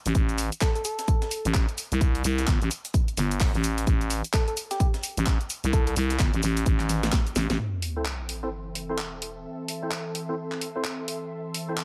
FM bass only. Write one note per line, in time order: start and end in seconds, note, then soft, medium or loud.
0.06 0.13 A1 loud
0.15 0.50 A1 loud
1.45 1.66 A1 loud
1.92 2.23 C2 loud
2.24 2.46 C2 loud
2.48 2.59 G1 loud
2.62 2.69 A1 medium
3.17 3.52 G1 loud
3.55 3.86 A1 loud
3.87 4.22 A1 loud
5.17 5.38 A1 loud
5.64 5.95 C2 loud
5.96 6.18 C2 loud
6.20 6.31 G1 loud
6.34 6.41 A1 loud
6.43 6.65 A1 loud
6.66 7.11 A1 loud
7.36 7.48 A1 loud
7.50 7.58 A1 loud